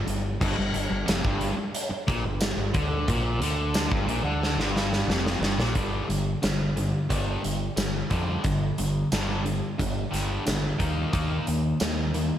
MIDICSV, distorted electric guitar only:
0, 0, Header, 1, 3, 480
1, 0, Start_track
1, 0, Key_signature, -2, "minor"
1, 0, Tempo, 670391
1, 287, Time_signature, 4, 2, 24, 8
1, 8868, End_track
2, 0, Start_track
2, 0, Title_t, "Distorted electric guitar"
2, 0, Program_c, 0, 30
2, 45, Note_on_c, 0, 43, 71
2, 238, Note_off_c, 0, 43, 0
2, 289, Note_on_c, 0, 43, 100
2, 401, Note_off_c, 0, 43, 0
2, 416, Note_on_c, 0, 43, 74
2, 521, Note_off_c, 0, 43, 0
2, 529, Note_on_c, 0, 43, 68
2, 636, Note_off_c, 0, 43, 0
2, 645, Note_on_c, 0, 43, 73
2, 756, Note_off_c, 0, 43, 0
2, 759, Note_on_c, 0, 41, 100
2, 876, Note_off_c, 0, 41, 0
2, 890, Note_on_c, 0, 43, 102
2, 1115, Note_off_c, 0, 43, 0
2, 1484, Note_on_c, 0, 46, 97
2, 1598, Note_off_c, 0, 46, 0
2, 1606, Note_on_c, 0, 43, 69
2, 1798, Note_off_c, 0, 43, 0
2, 1844, Note_on_c, 0, 43, 78
2, 1961, Note_on_c, 0, 50, 103
2, 1965, Note_off_c, 0, 43, 0
2, 2196, Note_off_c, 0, 50, 0
2, 2214, Note_on_c, 0, 46, 101
2, 2443, Note_off_c, 0, 46, 0
2, 2447, Note_on_c, 0, 50, 99
2, 2799, Note_off_c, 0, 50, 0
2, 2801, Note_on_c, 0, 43, 100
2, 2910, Note_on_c, 0, 46, 99
2, 2916, Note_off_c, 0, 43, 0
2, 3030, Note_off_c, 0, 46, 0
2, 3035, Note_on_c, 0, 50, 98
2, 3273, Note_off_c, 0, 50, 0
2, 3286, Note_on_c, 0, 43, 86
2, 3638, Note_off_c, 0, 43, 0
2, 3641, Note_on_c, 0, 41, 90
2, 3876, Note_off_c, 0, 41, 0
2, 3885, Note_on_c, 0, 43, 105
2, 3998, Note_off_c, 0, 43, 0
2, 4001, Note_on_c, 0, 46, 101
2, 4115, Note_on_c, 0, 43, 81
2, 4116, Note_off_c, 0, 46, 0
2, 4120, Note_on_c, 0, 50, 83
2, 4120, Note_on_c, 0, 55, 82
2, 4345, Note_off_c, 0, 50, 0
2, 4346, Note_off_c, 0, 43, 0
2, 4348, Note_off_c, 0, 55, 0
2, 4353, Note_on_c, 0, 50, 69
2, 4354, Note_on_c, 0, 43, 65
2, 4575, Note_off_c, 0, 50, 0
2, 4576, Note_off_c, 0, 43, 0
2, 4598, Note_on_c, 0, 43, 66
2, 4604, Note_on_c, 0, 50, 72
2, 4818, Note_off_c, 0, 43, 0
2, 4821, Note_off_c, 0, 50, 0
2, 4843, Note_on_c, 0, 43, 62
2, 4847, Note_on_c, 0, 50, 67
2, 5060, Note_off_c, 0, 43, 0
2, 5062, Note_off_c, 0, 50, 0
2, 5083, Note_on_c, 0, 50, 92
2, 5084, Note_on_c, 0, 43, 88
2, 5086, Note_on_c, 0, 55, 100
2, 5310, Note_off_c, 0, 50, 0
2, 5311, Note_off_c, 0, 43, 0
2, 5312, Note_off_c, 0, 55, 0
2, 5324, Note_on_c, 0, 43, 66
2, 5325, Note_on_c, 0, 50, 70
2, 5541, Note_off_c, 0, 43, 0
2, 5542, Note_off_c, 0, 50, 0
2, 5560, Note_on_c, 0, 50, 80
2, 5561, Note_on_c, 0, 43, 65
2, 5779, Note_off_c, 0, 50, 0
2, 5780, Note_off_c, 0, 43, 0
2, 5800, Note_on_c, 0, 43, 86
2, 5807, Note_on_c, 0, 50, 101
2, 5807, Note_on_c, 0, 55, 88
2, 6029, Note_off_c, 0, 43, 0
2, 6033, Note_off_c, 0, 50, 0
2, 6033, Note_off_c, 0, 55, 0
2, 6043, Note_on_c, 0, 43, 72
2, 6046, Note_on_c, 0, 50, 78
2, 6261, Note_off_c, 0, 43, 0
2, 6263, Note_off_c, 0, 50, 0
2, 6289, Note_on_c, 0, 43, 67
2, 6293, Note_on_c, 0, 50, 80
2, 6505, Note_off_c, 0, 43, 0
2, 6507, Note_off_c, 0, 50, 0
2, 6530, Note_on_c, 0, 43, 86
2, 6533, Note_on_c, 0, 50, 82
2, 6538, Note_on_c, 0, 55, 93
2, 6755, Note_off_c, 0, 43, 0
2, 6756, Note_off_c, 0, 50, 0
2, 6759, Note_off_c, 0, 55, 0
2, 6767, Note_on_c, 0, 50, 74
2, 6769, Note_on_c, 0, 43, 72
2, 6984, Note_off_c, 0, 50, 0
2, 6985, Note_off_c, 0, 43, 0
2, 7006, Note_on_c, 0, 43, 74
2, 7010, Note_on_c, 0, 50, 84
2, 7224, Note_off_c, 0, 43, 0
2, 7225, Note_off_c, 0, 50, 0
2, 7237, Note_on_c, 0, 50, 95
2, 7240, Note_on_c, 0, 43, 80
2, 7242, Note_on_c, 0, 55, 94
2, 7469, Note_off_c, 0, 50, 0
2, 7470, Note_off_c, 0, 43, 0
2, 7471, Note_off_c, 0, 55, 0
2, 7488, Note_on_c, 0, 43, 72
2, 7488, Note_on_c, 0, 50, 72
2, 7705, Note_off_c, 0, 43, 0
2, 7705, Note_off_c, 0, 50, 0
2, 7721, Note_on_c, 0, 51, 94
2, 7724, Note_on_c, 0, 58, 93
2, 7725, Note_on_c, 0, 63, 93
2, 7951, Note_off_c, 0, 51, 0
2, 7953, Note_off_c, 0, 58, 0
2, 7953, Note_off_c, 0, 63, 0
2, 7964, Note_on_c, 0, 51, 85
2, 7969, Note_on_c, 0, 58, 82
2, 7971, Note_on_c, 0, 63, 85
2, 8193, Note_off_c, 0, 51, 0
2, 8195, Note_off_c, 0, 58, 0
2, 8197, Note_off_c, 0, 63, 0
2, 8213, Note_on_c, 0, 51, 73
2, 8215, Note_on_c, 0, 58, 77
2, 8428, Note_off_c, 0, 51, 0
2, 8429, Note_off_c, 0, 58, 0
2, 8456, Note_on_c, 0, 51, 74
2, 8458, Note_on_c, 0, 58, 84
2, 8670, Note_off_c, 0, 51, 0
2, 8670, Note_off_c, 0, 58, 0
2, 8697, Note_on_c, 0, 51, 68
2, 8703, Note_on_c, 0, 58, 68
2, 8868, Note_off_c, 0, 51, 0
2, 8868, Note_off_c, 0, 58, 0
2, 8868, End_track
3, 0, Start_track
3, 0, Title_t, "Muted distorted electric guitar strokes"
3, 1123, Note_on_c, 9, 29, 53
3, 1195, Note_off_c, 9, 29, 0
3, 1361, Note_on_c, 9, 29, 52
3, 1433, Note_off_c, 9, 29, 0
3, 8868, End_track
0, 0, End_of_file